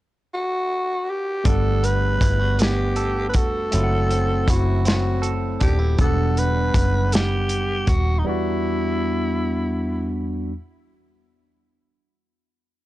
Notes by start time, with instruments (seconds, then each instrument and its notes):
0.34 tenor saxophone F#4
1.10 tenor saxophone G4
1.44 fingered electric bass G1, clean electric guitar G3, tine electric piano A3 B3 D4, tenor saxophone A4, kick, closed hi-hat
1.49 tine electric piano F#5
1.83 clean electric guitar B3, tenor saxophone B4, closed hi-hat
2.21 fingered electric bass G1, clean electric guitar E4, kick, closed hi-hat
2.39 clean electric guitar F#4
2.59 clean electric guitar B3, tenor saxophone G4, snare, closed hi-hat
2.96 clean electric guitar A4, closed hi-hat
3.29 tenor saxophone B4
3.34 fingered electric bass F1, clean electric guitar F#4, tenor saxophone A4, kick, closed hi-hat
3.71 fingered electric bass F#1, clean electric guitar F#3, tine electric piano A3 C4 E4, closed hi-hat
3.77 tine electric piano F4
3.83 tine electric piano F#5
4.10 clean electric guitar C4, closed hi-hat
4.48 fingered electric bass F#1, clean electric guitar E4, tenor saxophone F#4, kick, closed hi-hat
4.85 clean electric guitar C4, tenor saxophone F#4, snare, closed hi-hat
5.22 clean electric guitar A4, closed hi-hat
5.60 fingered electric bass D#1, clean electric guitar D4, tenor saxophone G4, kick, closed hi-hat
5.79 clean electric guitar E4
5.98 fingered electric bass E1, tine electric piano G3 B3, tenor saxophone A4, kick, closed hi-hat
6.02 tine electric piano D4 F#5
6.37 tenor saxophone B4, closed hi-hat
6.74 fingered electric bass F#1, kick, closed hi-hat
7.12 tenor saxophone G4, snare, closed hi-hat
7.49 closed hi-hat
7.87 fingered electric bass D#1, tenor saxophone F#4, kick, closed hi-hat
8.19 tenor saxophone D#4
8.24 tine electric piano E2 G3 B3, tenor saxophone E4
8.28 tine electric piano D4 F#4